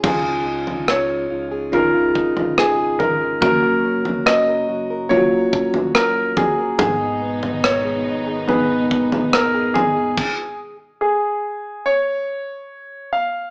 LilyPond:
<<
  \new Staff \with { instrumentName = "Grand piano" } { \time 4/4 \key cis \mixolydian \tempo 4 = 71 gis'4 cis''4 ais'4 gis'8 ais'8 | ais'4 dis''4 cis''4 ais'8 gis'8 | gis'4 cis''4 b'4 ais'8 gis'8~ | gis'8 r8 gis'4 cis''4. eis''8 | }
  \new Staff \with { instrumentName = "Steel-string acoustic guitar" } { \time 4/4 \key cis \mixolydian cis16 eis'16 dis'16 eis'16 dis'16 gis'16 eis'16 gis'16 cis16 eis'16 dis'16 eis'16 dis'16 gis'16 eis'16 gis'16 | fis16 fis'16 cis'16 fis'16 cis'16 ais'16 fis'16 ais'16 fis16 fis'16 cis'16 fis'16 cis'16 ais'16 fis'16 ais'16 | r16 dis'16 b16 dis'16 b16 gis'16 dis'16 gis'16 gis,16 dis'16 b16 dis'16 b16 gis'16 dis'16 gis'16 | r1 | }
  \new Staff \with { instrumentName = "Tine electric piano" } { \time 4/4 \key cis \mixolydian <cis' dis' eis'>2 <cis' dis' eis'>2 | <ais cis' fis'>2 <ais cis' eis' fis'>2 | <b dis' gis'>2 <b dis' gis'>2 | r1 | }
  \new Staff \with { instrumentName = "Tine electric piano" } { \clef bass \time 4/4 \key cis \mixolydian cis4. r2 r8 | r1 | gis,4. r2 r8 | r1 | }
  \new Staff \with { instrumentName = "String section" } { \clef bass \time 4/4 \key cis \mixolydian r1 | r1 | <gis, b, dis b dis'>1 | r1 | }
  \new Staff \with { instrumentName = "Sub bass" } { \clef bass \time 4/4 \key cis \mixolydian cis,4. cis,4 gis,,4. | fis,,4. fis,,4 dis,,4. | gis,,4. gis,,4 dis,,4. | r1 | }
  \new DrumStaff \with { instrumentName = "Drums" } \drummode { \time 4/4 <cymc bd tomfh>8. tomfh16 ss4 tomfh8 bd16 tomfh16 ss8 tomfh8 | <bd tomfh>8. tomfh16 ss4 tomfh8 bd16 tomfh16 ss8 <bd tomfh>8 | <bd tomfh>8. tomfh16 ss4 tomfh8 bd16 tomfh16 ss8 tomfh8 | <cymc bd>4 r4 r4 r4 | }
>>